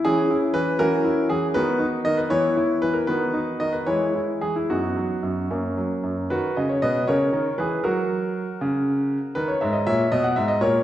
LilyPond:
<<
  \new Staff \with { instrumentName = "Grand piano" } { \time 6/8 \key b \major \tempo 4. = 79 << { gis'4 b'8 ais'4 gis'8 | b'4 dis''16 b'16 cis''4 b'16 ais'16 | b'4 dis''16 b'16 cis''4 gis'16 e'16 | fis'4. r4. |
<fis' b'>8 dis''16 cis''16 <b' dis''>8 <ais' cis''>4 <gis' b'>8 | <fis' ais'>2. | b'16 cis''16 e''16 dis''16 <cis'' e''>8 dis''16 fis''16 e''16 dis''16 <ais' cis''>8 | } \\ { <cis' e'>4. <cis' fis'>4. | <b fis'>4. <b e'>4. | <b fis'>4. <gis e'>4. | <b dis'>4. <ais cis'>4. |
r2. | r2. | r2. | } >> }
  \new Staff \with { instrumentName = "Grand piano" } { \clef bass \time 6/8 \key b \major e8 e'8 e8 e8 e'8 e8 | dis8 dis'8 dis8 e8 e'8 e8 | dis8 dis'8 dis8 e8 e'8 e8 | fis,8 fis8 fis,8 fis,8 fis8 fis,8 |
dis8 cis8 b,8 cis8 dis8 e8 | fis4. cis4. | dis8 gis,8 ais,8 b,8 gis,8 ais,8 | }
>>